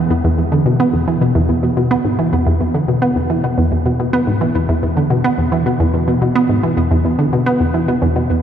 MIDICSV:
0, 0, Header, 1, 2, 480
1, 0, Start_track
1, 0, Tempo, 555556
1, 91, Time_signature, 4, 2, 24, 8
1, 7276, End_track
2, 0, Start_track
2, 0, Title_t, "Synth arpeggio sound"
2, 0, Program_c, 0, 84
2, 89, Note_on_c, 0, 40, 80
2, 179, Note_off_c, 0, 40, 0
2, 210, Note_on_c, 0, 40, 97
2, 264, Note_off_c, 0, 40, 0
2, 330, Note_on_c, 0, 40, 72
2, 383, Note_off_c, 0, 40, 0
2, 448, Note_on_c, 0, 50, 74
2, 503, Note_off_c, 0, 50, 0
2, 568, Note_on_c, 0, 47, 78
2, 623, Note_off_c, 0, 47, 0
2, 689, Note_on_c, 0, 59, 92
2, 804, Note_off_c, 0, 59, 0
2, 808, Note_on_c, 0, 40, 71
2, 863, Note_off_c, 0, 40, 0
2, 929, Note_on_c, 0, 52, 71
2, 1044, Note_off_c, 0, 52, 0
2, 1048, Note_on_c, 0, 47, 79
2, 1138, Note_off_c, 0, 47, 0
2, 1168, Note_on_c, 0, 40, 95
2, 1222, Note_off_c, 0, 40, 0
2, 1287, Note_on_c, 0, 40, 75
2, 1342, Note_off_c, 0, 40, 0
2, 1407, Note_on_c, 0, 47, 72
2, 1519, Note_off_c, 0, 47, 0
2, 1529, Note_on_c, 0, 47, 81
2, 1583, Note_off_c, 0, 47, 0
2, 1649, Note_on_c, 0, 59, 96
2, 1764, Note_off_c, 0, 59, 0
2, 1768, Note_on_c, 0, 44, 71
2, 1823, Note_off_c, 0, 44, 0
2, 1890, Note_on_c, 0, 52, 74
2, 2004, Note_off_c, 0, 52, 0
2, 2010, Note_on_c, 0, 40, 77
2, 2099, Note_off_c, 0, 40, 0
2, 2130, Note_on_c, 0, 40, 97
2, 2183, Note_off_c, 0, 40, 0
2, 2250, Note_on_c, 0, 40, 72
2, 2304, Note_off_c, 0, 40, 0
2, 2370, Note_on_c, 0, 50, 74
2, 2424, Note_off_c, 0, 50, 0
2, 2490, Note_on_c, 0, 47, 78
2, 2543, Note_off_c, 0, 47, 0
2, 2609, Note_on_c, 0, 59, 91
2, 2724, Note_off_c, 0, 59, 0
2, 2729, Note_on_c, 0, 40, 74
2, 2783, Note_off_c, 0, 40, 0
2, 2850, Note_on_c, 0, 52, 72
2, 2964, Note_off_c, 0, 52, 0
2, 2971, Note_on_c, 0, 47, 82
2, 3059, Note_off_c, 0, 47, 0
2, 3092, Note_on_c, 0, 40, 93
2, 3144, Note_off_c, 0, 40, 0
2, 3211, Note_on_c, 0, 40, 74
2, 3264, Note_off_c, 0, 40, 0
2, 3332, Note_on_c, 0, 47, 73
2, 3442, Note_off_c, 0, 47, 0
2, 3453, Note_on_c, 0, 47, 82
2, 3505, Note_off_c, 0, 47, 0
2, 3570, Note_on_c, 0, 59, 100
2, 3685, Note_off_c, 0, 59, 0
2, 3691, Note_on_c, 0, 44, 73
2, 3744, Note_off_c, 0, 44, 0
2, 3810, Note_on_c, 0, 52, 74
2, 3925, Note_off_c, 0, 52, 0
2, 3932, Note_on_c, 0, 40, 78
2, 4020, Note_off_c, 0, 40, 0
2, 4051, Note_on_c, 0, 40, 98
2, 4104, Note_off_c, 0, 40, 0
2, 4172, Note_on_c, 0, 40, 72
2, 4225, Note_off_c, 0, 40, 0
2, 4291, Note_on_c, 0, 50, 73
2, 4344, Note_off_c, 0, 50, 0
2, 4409, Note_on_c, 0, 47, 80
2, 4463, Note_off_c, 0, 47, 0
2, 4531, Note_on_c, 0, 59, 92
2, 4645, Note_off_c, 0, 59, 0
2, 4649, Note_on_c, 0, 40, 76
2, 4703, Note_off_c, 0, 40, 0
2, 4769, Note_on_c, 0, 52, 72
2, 4884, Note_off_c, 0, 52, 0
2, 4890, Note_on_c, 0, 47, 79
2, 4979, Note_off_c, 0, 47, 0
2, 5009, Note_on_c, 0, 40, 94
2, 5063, Note_off_c, 0, 40, 0
2, 5130, Note_on_c, 0, 40, 75
2, 5183, Note_off_c, 0, 40, 0
2, 5249, Note_on_c, 0, 47, 74
2, 5360, Note_off_c, 0, 47, 0
2, 5370, Note_on_c, 0, 47, 80
2, 5424, Note_off_c, 0, 47, 0
2, 5490, Note_on_c, 0, 59, 97
2, 5604, Note_off_c, 0, 59, 0
2, 5610, Note_on_c, 0, 44, 72
2, 5663, Note_off_c, 0, 44, 0
2, 5730, Note_on_c, 0, 52, 73
2, 5844, Note_off_c, 0, 52, 0
2, 5849, Note_on_c, 0, 40, 77
2, 5939, Note_off_c, 0, 40, 0
2, 5969, Note_on_c, 0, 40, 100
2, 6023, Note_off_c, 0, 40, 0
2, 6089, Note_on_c, 0, 40, 71
2, 6143, Note_off_c, 0, 40, 0
2, 6209, Note_on_c, 0, 50, 74
2, 6263, Note_off_c, 0, 50, 0
2, 6331, Note_on_c, 0, 47, 79
2, 6384, Note_off_c, 0, 47, 0
2, 6449, Note_on_c, 0, 59, 95
2, 6564, Note_off_c, 0, 59, 0
2, 6569, Note_on_c, 0, 40, 74
2, 6623, Note_off_c, 0, 40, 0
2, 6688, Note_on_c, 0, 52, 71
2, 6803, Note_off_c, 0, 52, 0
2, 6810, Note_on_c, 0, 47, 82
2, 6899, Note_off_c, 0, 47, 0
2, 6929, Note_on_c, 0, 40, 95
2, 6983, Note_off_c, 0, 40, 0
2, 7050, Note_on_c, 0, 47, 74
2, 7139, Note_off_c, 0, 47, 0
2, 7171, Note_on_c, 0, 40, 73
2, 7276, Note_off_c, 0, 40, 0
2, 7276, End_track
0, 0, End_of_file